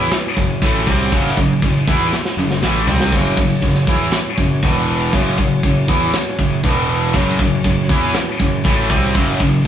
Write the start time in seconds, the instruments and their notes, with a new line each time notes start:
Already playing: distorted electric guitar E3 B3 E4, tonewheel organ F#3 C#4 G#4
0.12 snare, crash
0.37 picked electric bass F#1, distorted electric guitar F#2 C#3, kick, crash
0.62 picked electric bass A1, distorted electric guitar A2 E3 A3, kick, crash
0.87 picked electric bass C2, distorted electric guitar C3 G3 C4, kick, crash
1.12 picked electric bass F#1, distorted electric guitar F#2 C#3 F#3, tonewheel organ D#4, kick, crash
1.37 picked electric bass F#1, distorted electric guitar F#2 C#3, kick, crash
1.62 picked electric bass F#1, distorted electric guitar F#2 C#3, kick, crash
1.87 picked electric bass E2, distorted electric guitar E3 B3 E4, kick, crash
2.13 snare
2.25 snare
2.37 picked electric bass F#1, distorted electric guitar F#2 C#3
2.51 snare
2.62 picked electric bass A1, distorted electric guitar A2 E3 A3, snare
2.87 picked electric bass C2, distorted electric guitar C3 G3 C4, floor tom
3.00 snare
3.12 picked electric bass F#1, distorted electric guitar F#2 C#3 F#3, tonewheel organ F#3 C#4 G#4, kick, crash
3.37 picked electric bass F#1, distorted electric guitar F#2 C#3, kick, crash
3.62 picked electric bass F#1, distorted electric guitar F#2 C#3, kick, crash
3.75 snare
3.87 picked electric bass E2, distorted electric guitar E3 B3 E4, kick, crash
4.12 snare, crash
4.38 picked electric bass F#1, distorted electric guitar F#2 C#3, kick, crash
4.63 picked electric bass E1, distorted electric guitar E2 B2 E3, tonewheel organ E3 B3 F#4, kick, crash
4.88 crash
5.13 picked electric bass F#1, distorted electric guitar F#2 C#3 F#3, tonewheel organ F#3 C#4 G#4, kick, crash
5.38 picked electric bass F#1, distorted electric guitar F#2 C#3, kick, crash
5.63 picked electric bass F#1, distorted electric guitar F#2 C#3, kick, crash
5.88 picked electric bass E2, distorted electric guitar E3 B3 E4, kick, crash
6.14 snare, crash
6.39 picked electric bass F#1, distorted electric guitar F#2 C#3, kick, crash
6.63 picked electric bass E1, distorted electric guitar E2 B2 E3, tonewheel organ E3 B3 F#4, kick, crash
6.89 crash
7.13 picked electric bass F#1, distorted electric guitar F#2 C#3 F#3, tonewheel organ F#3 C#4 G#4, kick, crash
7.39 picked electric bass F#1, distorted electric guitar F#2 C#3, kick, crash
7.64 picked electric bass F#1, distorted electric guitar F#2 C#3, kick, crash
7.89 picked electric bass E2, distorted electric guitar E3 B3 E4, kick, crash
8.14 snare, crash
8.40 picked electric bass F#1, distorted electric guitar F#2 C#3, kick, crash
8.65 picked electric bass A1, distorted electric guitar A2 E3 A3, kick, crash
8.90 picked electric bass C2, distorted electric guitar C3 G3 C4, kick, crash
9.15 picked electric bass F#1, distorted electric guitar F#2 C#3 F#3, tonewheel organ D#4, kick, crash
9.40 picked electric bass F#1, distorted electric guitar F#2 C#3, kick, crash